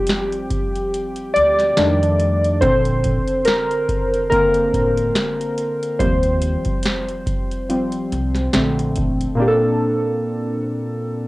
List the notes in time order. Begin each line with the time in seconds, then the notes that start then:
Already playing: F3 G3 C4 G4
0.07 snare, closed hi-hat
0.32 closed hi-hat
0.50 kick, closed hi-hat
0.76 closed hi-hat
0.94 closed hi-hat
1.16 closed hi-hat
1.34 D2 D5, closed hi-hat
1.59 snare, closed hi-hat
1.77 F2 D#3 G3 A3 D4, snare, closed hi-hat
2.03 closed hi-hat
2.20 closed hi-hat
2.44 closed hi-hat
2.61 A#1 D3 C4 A4 C5, kick, closed hi-hat
2.85 closed hi-hat
3.04 kick, closed hi-hat
3.28 closed hi-hat
3.45 A#4, snare, closed hi-hat
3.71 closed hi-hat
3.88 kick, closed hi-hat
4.14 closed hi-hat
4.30 D3 A#3 C4 A#4, kick, closed hi-hat
4.54 closed hi-hat
4.73 A1, kick, closed hi-hat
4.97 closed hi-hat
5.15 snare, closed hi-hat
5.41 closed hi-hat
5.58 closed hi-hat
5.83 closed hi-hat
5.99 D#2 F3 G3 C4 C5, kick, closed hi-hat
6.23 closed hi-hat
6.42 closed hi-hat
6.65 kick, closed hi-hat
6.83 snare, closed hi-hat
7.09 closed hi-hat
7.26 kick, closed hi-hat
7.51 closed hi-hat
7.69 F3 G3 C4, closed hi-hat
7.92 closed hi-hat
8.12 C2, closed hi-hat
8.35 snare, closed hi-hat
8.53 A#1 D3 A3 C4, snare, closed hi-hat
8.79 closed hi-hat
8.96 kick, closed hi-hat
9.21 closed hi-hat
9.35 A#2 A#3 C4
9.39 D4 G4
9.48 A4